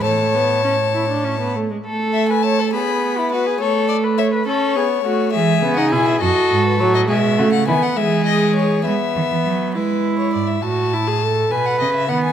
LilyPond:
<<
  \new Staff \with { instrumentName = "Violin" } { \time 6/8 \key a \major \tempo 4. = 68 a''2~ a''8 r8 | r8 e''16 gis''16 a''8 b''4 b'8 | cis''8 d''8 e''8 cis''4. | e''8. fis''16 gis''16 e''16 dis''8. b'16 cis''16 dis''16 |
e''8. fis''16 gis''16 fis''16 e''8 dis''8 cis''8 | e''4. b'8. cis''16 d''16 e''16 | a''4. gis''16 fis''16 dis''16 e''16 fis''16 gis''16 | }
  \new Staff \with { instrumentName = "Violin" } { \time 6/8 \key a \major cis''2~ cis''8 r8 | a'8. b'16 cis''16 a'16 gis'8. e'16 fis'16 gis'16 | a'8. b'16 cis''16 b'16 a'8 gis'8 fis'8 | gis'4. a'4. |
gis'8 fis'8 e'8 gis'4. | r2. | r2. | }
  \new Staff \with { instrumentName = "Viola" } { \time 6/8 \key a \major a8 b8 cis'8 e'16 d'16 cis'16 b16 a16 gis16 | a4. b4. | a4. cis'8 b8 a8 | gis8 b16 dis'16 e'8 fis'4 fis8 |
gis8 a8 b8 gis4. | b4. e'4. | fis'8 e'16 gis'16 a'8 b'4 b8 | }
  \new Staff \with { instrumentName = "Cello" } { \clef bass \time 6/8 \key a \major a,2~ a,8 r8 | r2. | r2. | e8 cis8 b,8 fis,8 gis,8 a,8 |
b,8 cis8 dis8 e4. | gis8 dis16 e16 fis8 gis4 gis,8 | a,4. b,8 cis8 dis8 | }
>>